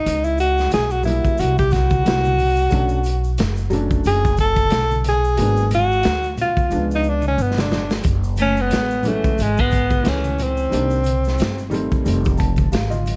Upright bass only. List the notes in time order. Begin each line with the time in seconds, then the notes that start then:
0.06 C#2
0.72 B1
1.25 muted upright bass stroke
1.40 C2
2.06 C2
2.72 B1
3.39 F#1
4.05 F#1
4.72 B1
5.39 G#1
6.05 D2
6.72 C#2
7.38 G1
8.05 F#1
8.72 A1
9.24 muted upright bass stroke
9.39 G#1
10.05 C#2
10.72 C2
11.40 G1
12.06 F1
12.73 G#1